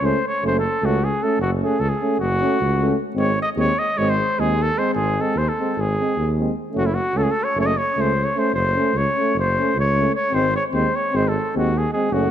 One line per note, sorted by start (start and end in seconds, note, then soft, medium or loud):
0.01 0.13 C#2 medium
0.01 0.18 A3 medium
0.01 0.18 C#4 medium
0.05 0.26 C5 medium
0.27 0.43 C#5 medium
0.42 0.65 F#1 medium
0.42 0.59 A3 medium
0.42 0.59 C#4 medium
0.47 0.55 C5 medium
0.59 0.87 A4 medium
0.82 1.13 C#2 medium
0.82 0.98 A3 medium
0.82 0.98 C#4 medium
0.82 1.06 F#4 medium
1.05 1.25 G#4 medium
1.21 1.38 A3 medium
1.21 1.37 C#4 medium
1.21 1.40 A4 medium
1.38 1.61 F#1 medium
1.38 1.51 F#4 medium
1.61 1.78 A3 medium
1.61 1.78 C#4 medium
1.61 1.81 G#4 medium
1.79 1.92 C#2 medium
1.79 1.91 A4 medium
1.89 2.19 G#4 medium
2.01 2.18 A3 medium
2.01 2.18 C#4 medium
2.19 2.42 F#1 medium
2.19 2.95 F#4 medium
2.41 2.58 A3 medium
2.41 2.57 C#4 medium
2.61 2.92 C#2 medium
2.81 2.96 A3 medium
2.81 2.96 C#4 medium
3.15 3.38 G#1 medium
3.15 3.33 G#3 medium
3.15 3.31 C4 medium
3.19 3.39 C#5 medium
3.42 3.50 D#5 medium
3.56 3.69 D#2 medium
3.56 3.73 G#3 medium
3.56 3.73 C4 medium
3.56 3.80 C#5 loud
3.79 3.99 D#5 medium
3.98 4.20 G#1 medium
3.98 4.14 G#3 medium
3.98 4.17 C4 medium
3.98 4.11 C#5 loud
4.10 4.41 C5 medium
4.38 4.69 D#2 medium
4.38 4.54 G#3 medium
4.38 4.54 C4 medium
4.38 4.64 G#4 medium
4.62 4.80 A4 medium
4.76 4.93 G#3 medium
4.76 4.94 C4 medium
4.76 4.94 C5 medium
4.94 5.17 G#1 medium
4.94 5.23 G#4 medium
5.18 5.34 G#3 medium
5.18 5.36 C4 medium
5.18 5.40 A4 medium
5.34 5.47 D#2 medium
5.34 5.50 C5 medium
5.49 5.82 A4 medium
5.59 5.75 G#3 soft
5.59 5.76 C4 soft
5.76 5.99 G#1 medium
5.81 6.32 G#4 medium
5.99 6.15 G#3 soft
5.99 6.15 C4 soft
6.17 6.48 D#2 medium
6.38 6.53 G#3 soft
6.38 6.52 C4 soft
6.72 6.97 F#1 medium
6.72 6.89 A3 medium
6.72 6.89 C#4 medium
6.78 6.87 F#4 medium
6.86 6.96 E4 medium
6.95 7.19 F#4 medium
7.14 7.27 C#2 medium
7.14 7.31 A3 medium
7.14 7.31 C#4 medium
7.14 7.25 A4 medium
7.24 7.32 G#4 medium
7.31 7.45 A4 medium
7.44 7.59 C#5 medium
7.55 7.77 F#1 medium
7.55 7.73 A3 medium
7.55 7.73 C#4 medium
7.61 7.68 C#5 medium
7.66 7.79 D#5 medium
7.77 8.02 C#5 medium
7.96 8.28 C#2 medium
7.96 8.12 A3 medium
7.96 8.11 C#4 medium
8.01 8.26 C5 medium
8.25 8.40 C#5 medium
8.35 8.52 A3 medium
8.35 8.51 C#4 medium
8.35 8.54 C5 medium
8.53 8.76 F#1 medium
8.53 8.99 C5 medium
8.75 8.93 A3 medium
8.75 8.91 C#4 medium
8.94 9.06 C#2 medium
8.94 9.37 C#5 medium
9.17 9.35 A3 medium
9.17 9.33 C#4 medium
9.34 9.57 F#1 medium
9.40 9.76 C5 medium
9.57 9.74 A3 medium
9.57 9.73 C#4 medium
9.76 10.07 C#2 medium
9.76 10.14 C#5 medium
9.96 10.12 A3 medium
9.96 10.10 C#4 medium
10.15 10.36 C#5 medium
10.31 10.55 G#1 medium
10.31 10.50 G#3 medium
10.31 10.47 C4 medium
10.31 10.55 C5 medium
10.56 10.64 C#5 medium
10.71 10.85 D#2 medium
10.71 10.91 G#3 medium
10.71 10.88 C4 medium
10.71 10.97 C5 medium
10.96 11.17 C#5 medium
11.12 11.36 G#1 medium
11.12 11.32 G#3 medium
11.12 11.29 C4 medium
11.12 11.30 C5 medium
11.28 11.56 A4 medium
11.54 11.86 D#2 medium
11.54 11.70 G#3 medium
11.54 11.70 C4 medium
11.54 11.79 F#4 medium
11.78 11.92 G#4 medium
11.92 12.08 G#3 medium
11.92 12.10 C4 medium
11.92 12.14 G#4 medium
12.11 12.31 F#1 medium
12.11 12.28 A3 medium
12.11 12.28 C#4 medium
12.11 12.31 F#4 medium